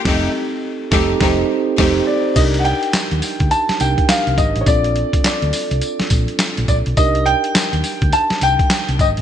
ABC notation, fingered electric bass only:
X:1
M:4/4
L:1/16
Q:"Swing 16ths" 1/4=104
K:F
V:1 name="Fingered electric bass" clef=bass
F,,,2 z4 F,,,2 F,,,2 z2 F,,,2 z2 | [K:Cdor] C,,3 z2 E,, z D,, z2 C,, z2 C,, _A,,, =A,,, | B,,,3 z2 D,, z C,, z2 B,,, z2 B,,, B,,, =B,,, | C,,3 z2 E,, z D,, z2 C,, z2 C,, _A,,, =A,,, |]